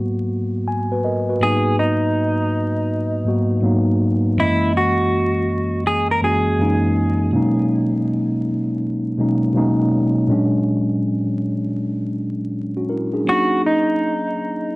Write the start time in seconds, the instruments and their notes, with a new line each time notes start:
Already playing: tine electric piano G#2 F#3 A#3 B3 F#4
0.68 tine electric piano G#5
0.92 tine electric piano F#4 B4
1.05 tine electric piano A#4 D#5
1.30 tine electric piano F#4 B4
1.40 tine electric piano G#2 F#3 A#3 B3 D#4, clean electric guitar G#4
1.79 clean electric guitar D#4
3.25 tine electric piano G#2 F#3 A#3 B3 F#4
3.62 tine electric piano G#2 F#3 A#3 B3 D#4
4.37 tine electric piano F#2 E3 G#3 A#3 C#4 D#5, clean electric guitar E4
4.77 clean electric guitar F#4
5.87 clean electric guitar G#4
6.11 clean electric guitar A#4
6.21 tine electric piano F#2 E3 G#3 A#3 C#4 F#4, clean electric guitar G#4
6.58 tine electric piano F#2 E3 G#3 A#3 C#4 D#4
7.32 tine electric piano B2 F#3 G#3 A#3 C#4 D#4
9.17 tine electric piano B2 F#3 G#3 A#3 C#4 D#4
9.54 tine electric piano B2 F#3 G#3 A#3 C#4 D#4
10.28 tine electric piano A#2 F#3 G#3 C#4 D4
12.77 tine electric piano C#4 F#4
12.89 tine electric piano E4 A#4
13.14 tine electric piano D4 G#4
13.25 tine electric piano F#3 A#3 C#4 D#4
13.29 clean electric guitar F#4
13.66 clean electric guitar D#4